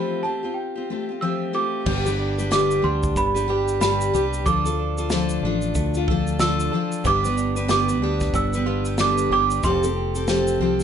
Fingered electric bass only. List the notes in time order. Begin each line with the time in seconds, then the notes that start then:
1.86 G1
2.84 D2
3.16 G1
4.14 C2
4.46 D2
5.43 A1
5.75 D2
7.05 G1
8.02 D2
8.34 G1
9.30 G1
9.64 F1
10.60 C2